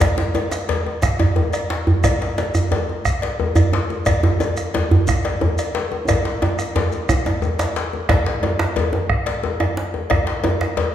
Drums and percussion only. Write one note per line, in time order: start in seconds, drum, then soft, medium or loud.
0.00 bombo rim medium
0.00 bombo low medium
0.00 cowbell medium
0.00 djembe slap soft
0.00 djembe slap loud
0.00 djembe bass medium
0.00 shekere medium
0.18 bombo rim soft
0.18 djembe slap medium
0.18 djembe tone medium
0.35 bombo rim soft
0.35 cowbell medium
0.35 djembe tone medium
0.35 shekere soft
0.51 bombo rim medium
0.51 djembe slap medium
0.51 shekere soft
0.69 cowbell medium
0.69 djembe slap medium
0.69 djembe bass medium
0.86 djembe tone medium
1.02 bombo rim medium
1.02 bombo low medium
1.02 djembe slap medium
1.02 shekere medium
1.19 cowbell medium
1.19 djembe slap medium
1.19 djembe bass medium
1.36 djembe tone medium
1.36 djembe bass medium
1.53 bombo rim medium
1.53 cowbell medium
1.53 shekere soft
1.70 bombo rim soft
1.70 djembe slap medium
1.87 djembe tone medium
1.87 djembe bass medium
2.04 bombo rim medium
2.04 bombo low medium
2.04 cowbell medium
2.04 djembe slap soft
2.04 djembe tone medium
2.04 djembe bass medium
2.04 shekere medium
2.21 bombo rim soft
2.21 djembe slap medium
2.38 bombo rim soft
2.38 cowbell medium
2.38 djembe slap medium
2.38 djembe tone medium
2.38 shekere soft
2.54 bombo rim medium
2.54 djembe bass medium
2.54 shekere medium
2.71 cowbell soft
2.71 djembe slap medium
2.71 djembe tone medium
2.71 djembe bass medium
2.89 djembe tone medium
3.05 bombo rim medium
3.05 bombo low medium
3.05 shekere medium
3.22 cowbell soft
3.22 djembe slap medium
3.40 djembe tone medium
3.40 djembe bass medium
3.56 bombo rim medium
3.56 cowbell medium
3.56 djembe bass loud
3.56 shekere soft
3.73 bombo rim soft
3.73 djembe slap medium
3.73 djembe tone medium
3.90 djembe tone medium
4.06 bombo rim loud
4.06 bombo low medium
4.06 cowbell medium
4.06 djembe slap soft
4.06 djembe tone medium
4.06 djembe bass medium
4.06 shekere medium
4.23 bombo rim soft
4.23 djembe slap medium
4.23 djembe bass loud
4.40 bombo rim soft
4.40 cowbell medium
4.40 djembe tone medium
4.40 shekere soft
4.57 bombo rim medium
4.57 shekere soft
4.74 cowbell soft
4.74 djembe slap medium
4.74 djembe tone medium
4.74 djembe bass medium
4.91 djembe tone medium
4.91 djembe bass loud
5.07 bombo rim medium
5.07 bombo low medium
5.07 djembe tone medium
5.07 shekere medium
5.25 cowbell soft
5.25 djembe slap medium
5.41 djembe tone medium
5.41 djembe bass medium
5.58 bombo rim medium
5.58 cowbell medium
5.58 shekere medium
5.75 bombo rim soft
5.75 djembe slap medium
5.92 djembe tone medium
6.08 bombo rim medium
6.08 bombo low medium
6.08 cowbell medium
6.08 djembe tone loud
6.08 djembe bass medium
6.08 shekere medium
6.25 bombo rim soft
6.25 djembe slap medium
6.42 bombo rim soft
6.42 cowbell medium
6.42 djembe tone loud
6.42 djembe tone medium
6.59 bombo rim medium
6.59 djembe slap soft
6.59 shekere medium
6.76 bombo rim soft
6.76 cowbell soft
6.76 djembe slap medium
6.76 djembe tone loud
6.76 djembe bass medium
6.92 bombo rim soft
6.92 djembe tone medium
6.92 shekere soft
7.09 bombo rim loud
7.09 bombo low loud
7.09 djembe tone loud
7.09 shekere medium
7.26 cowbell soft
7.26 djembe tone loud
7.26 shekere soft
7.42 djembe tone medium
7.42 djembe bass medium
7.42 shekere soft
7.59 bombo rim medium
7.59 cowbell soft
7.59 djembe slap loud
7.59 shekere soft
7.76 bombo rim soft
7.76 djembe slap medium
7.76 shekere soft
7.93 djembe tone medium
8.09 bombo rim loud
8.09 bombo low loud
8.09 cowbell medium
8.09 djembe slap soft
8.09 djembe slap loud
8.09 djembe bass medium
8.26 bombo rim soft
8.26 djembe slap medium
8.43 bombo rim soft
8.43 cowbell medium
8.43 djembe tone medium
8.59 bombo rim medium
8.59 djembe slap loud
8.76 cowbell soft
8.76 djembe slap medium
8.76 djembe bass medium
8.93 djembe tone medium
9.10 bombo rim loud
9.10 bombo low loud
9.26 cowbell medium
9.26 djembe slap medium
9.44 djembe tone medium
9.60 bombo rim medium
9.60 cowbell medium
9.60 djembe tone loud
9.77 bombo rim soft
9.77 djembe slap medium
9.94 djembe tone medium
10.10 bombo rim loud
10.10 bombo low medium
10.10 cowbell medium
10.10 djembe slap soft
10.10 djembe tone medium
10.10 djembe bass medium
10.27 bombo rim soft
10.27 djembe slap medium
10.44 bombo rim soft
10.44 cowbell medium
10.44 djembe tone medium
10.44 djembe tone loud
10.61 bombo rim medium
10.61 djembe slap medium
10.77 cowbell soft
10.77 djembe slap medium
10.77 djembe bass medium